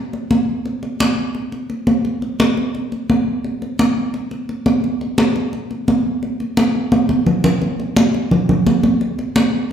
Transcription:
0.13 high conga
0.31 high conga
0.66 high conga
0.83 high conga
1.00 high conga
1.35 high conga
1.52 high conga
1.70 high conga
1.87 high conga
2.05 high conga
2.22 high conga
2.40 high conga
2.57 high conga
2.75 high conga
2.92 high conga
3.10 high conga
3.44 high conga
3.62 high conga
3.79 high conga
4.14 high conga
4.31 high conga
4.49 high conga
4.66 high conga
4.84 high conga
5.01 high conga
5.18 high conga
5.36 high conga
5.53 high conga
5.71 high conga
5.88 high conga
6.23 high conga
6.40 high conga
6.57 high conga
6.92 high conga
7.09 high conga
7.26 low conga
7.44 low conga
7.62 high conga
7.80 high conga
7.96 high conga
8.14 high conga
8.31 high conga, low conga
8.49 high conga, low conga
8.67 high conga
8.83 high conga
9.01 high conga
9.19 high conga
9.36 high conga

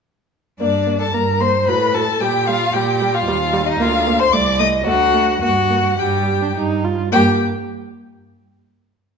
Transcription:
0.60 G2 A#3 D4 D5
0.86 A#3
0.99 A4 A5
1.14 G2 A#3 A#4 A#5
1.40 A#3 C5 C6
1.67 A2 F#3 B4 B5
1.94 F#3 A4 A5
2.20 A#2 G3 G4 G5
2.47 G3 F4 F5
2.73 A#2 G3 G4 G5
3.01 G3
3.14 F4 F5
3.27 D#2 G3
3.53 G3
3.66 D#4 D#5
3.79 D2 A#3 F4 F5
4.07 A#3
4.20 C5 C6
4.32 C2 A3 D5 D6
4.59 A3 D#5 D#6
4.86 D2 A3 F#4 F#5
5.14 A3
5.41 G2 A#3 F#4 F#5
5.70 A#3
5.99 G2 G3 G4 G5
6.42 D4
6.55 G2 D#4
6.85 F4
7.12 G2 A#3 G4 G5

